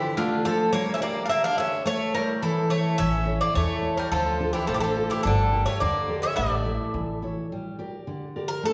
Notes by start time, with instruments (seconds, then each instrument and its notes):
Already playing: steel-string acoustic guitar D3 D4 F4 A4, bouzouki E3 G4
0.17 bouzouki D3 F4, steel-string acoustic guitar A3
0.44 bouzouki F3 A4, steel-string acoustic guitar D4 F4 A4
0.72 steel-string acoustic guitar G3, bouzouki A#3 C#5
0.94 bouzouki C#4 E5
1.01 bouzouki A#3 D5, steel-string acoustic guitar D4 G4 A#4
1.26 steel-string acoustic guitar D3, bouzouki D4 E5 F5
1.31 bouzouki A#3
1.44 bouzouki D4 F5
1.57 bouzouki C#4 E5, steel-string acoustic guitar D4 G4 A#4
1.85 steel-string acoustic guitar A3, bouzouki A3 C#5
2.14 bouzouki G3 A#4, steel-string acoustic guitar E4 A4 C#5
2.42 steel-string acoustic guitar E3, bouzouki E3 A4
2.69 bouzouki A3 C#5, steel-string acoustic guitar E4 A4 C#5
2.98 upright bass A1, steel-string acoustic guitar E3, bouzouki C#4 E5
3.25 steel-string acoustic guitar E4 A4 C#5
3.41 bouzouki A#3 D5
3.54 upright bass E2, steel-string acoustic guitar E3, bouzouki A3 C#5
3.82 steel-string acoustic guitar E4 A4 C#5
3.97 bouzouki G3 A#4
4.11 upright bass D2, steel-string acoustic guitar D3, bouzouki F3 A4
4.40 steel-string acoustic guitar D4 F4 A4
4.53 bouzouki E3 G4
4.67 upright bass A1, bouzouki F3 A4, steel-string acoustic guitar A3
4.74 bouzouki E3 G4
4.80 bouzouki F3 A4
4.96 steel-string acoustic guitar D4 F4 A4
5.10 bouzouki E3 G4
5.23 upright bass G1, bouzouki D3 A4, steel-string acoustic guitar G3
5.53 steel-string acoustic guitar G4 A4 A#4
5.66 bouzouki A3 C#5
5.80 upright bass E2, steel-string acoustic guitar D3, bouzouki A#3 D5
6.08 steel-string acoustic guitar G4 A4 A#4
6.22 bouzouki C#4 E5
6.36 upright bass A1, bouzouki A3 D5, steel-string acoustic guitar A3
6.65 steel-string acoustic guitar E4 A4 E5
6.94 upright bass A1, steel-string acoustic guitar E3
7.22 steel-string acoustic guitar E4 A4 C#5
7.52 steel-string acoustic guitar G3
7.79 steel-string acoustic guitar G4 A#4 D5
8.07 steel-string acoustic guitar D3
8.36 steel-string acoustic guitar G4 A#4 D5
8.48 bouzouki A#4
8.63 steel-string acoustic guitar A3, bouzouki A4